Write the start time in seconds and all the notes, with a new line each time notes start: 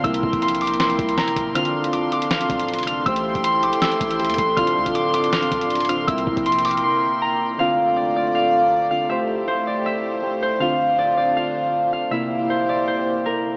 Already playing: C6 D6
0.03 C2 C3 A#3 E4 A#4 G5 E6, kick, closed hi-hat
0.14 closed hi-hat
0.23 C2, kick
0.33 A#1, kick, closed hi-hat
0.42 C6, closed hi-hat
0.48 closed hi-hat
0.55 closed hi-hat
0.61 D6, closed hi-hat, open hi-hat
0.67 closed hi-hat
0.74 closed hi-hat
0.80 C6, snare, closed hi-hat
0.90 closed hi-hat
0.99 C2, kick, closed hi-hat
1.09 closed hi-hat
1.18 A#5, snare, closed hi-hat
1.28 closed hi-hat
1.36 D1, kick, closed hi-hat
1.54 D3 C4 D4 F4 A4 F5 C6 F6, closed hi-hat
1.65 closed hi-hat
1.84 closed hi-hat
1.93 D6, closed hi-hat
2.12 D6, closed hi-hat
2.22 closed hi-hat
2.31 F6, snare, closed hi-hat
2.41 closed hi-hat
2.50 D1, kick, closed hi-hat
2.60 closed hi-hat
2.69 closed hi-hat
2.73 closed hi-hat
2.78 F1, closed hi-hat
2.83 F6, closed hi-hat
2.87 closed hi-hat
3.06 A1 A3 E4 G4 C5 G5 E6, kick, closed hi-hat
3.16 closed hi-hat
3.35 A1, kick, closed hi-hat
3.44 C6, closed hi-hat
3.63 A#1 D6, closed hi-hat
3.73 closed hi-hat
3.82 E6, snare, closed hi-hat
3.92 closed hi-hat
4.01 A1, kick, closed hi-hat
4.11 closed hi-hat
4.19 A3 G4 A4, closed hi-hat
4.25 closed hi-hat
4.29 E2, closed hi-hat
4.34 closed hi-hat
4.38 A1 C6, kick, closed hi-hat
4.56 D1 D3 C4 D4 F4 F5 F6, kick, closed hi-hat
4.67 closed hi-hat
4.76 D2
4.86 D1, kick, closed hi-hat
4.95 D6, closed hi-hat
5.14 D6, closed hi-hat
5.24 closed hi-hat
5.33 F6, snare, closed hi-hat
5.43 closed hi-hat
5.52 D1, kick, closed hi-hat
5.61 closed hi-hat
5.70 closed hi-hat
5.75 closed hi-hat
5.80 closed hi-hat
5.85 D3, closed hi-hat
5.89 C4 F4 F6, closed hi-hat
6.07 C2 C3 A#3 E4 A#4 G5 E6, kick, closed hi-hat
6.18 closed hi-hat
6.27 C2, kick
6.37 A#1, kick, closed hi-hat
6.46 C6, closed hi-hat
6.52 closed hi-hat
6.59 closed hi-hat
6.65 D6, closed hi-hat, open hi-hat
6.71 closed hi-hat
6.77 closed hi-hat
6.84 C6
7.22 A#5
7.58 D3 A3 C4 F4 C5 D5 F5
7.96 D5
8.16 D5
8.35 F5
8.91 D3 C4 F4 F5
9.09 A3 E4 G4 C5 E5
9.48 C5
9.67 D5
9.86 E5
10.22 A3 G4 C5
10.42 C5
10.60 D3 C4 D4 F4 F5
10.99 D5
11.17 D5
11.37 F5
11.93 F5
12.11 C3 A#3 E4 G4 C5 E5
12.50 C5
12.69 D5
12.87 C5
13.26 A#4